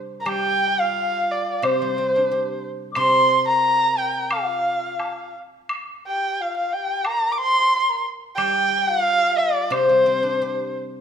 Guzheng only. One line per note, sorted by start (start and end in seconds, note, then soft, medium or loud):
0.00 0.95 C3 medium
0.00 0.24 G3 soft
0.00 0.62 C4 soft
0.00 0.78 D4 soft
0.00 0.96 G4 soft
0.25 1.80 G3 medium
1.62 2.95 C3 medium
1.82 3.14 G3 soft
1.98 3.31 C4 soft
2.16 3.48 D4 soft
2.31 3.64 G4 soft
2.96 4.99 C3 medium
8.37 9.88 G3 medium
9.70 11.01 C3 medium
9.89 11.01 G3 medium
10.06 11.01 C4 medium
10.23 11.01 D4 soft
10.42 11.01 G4 medium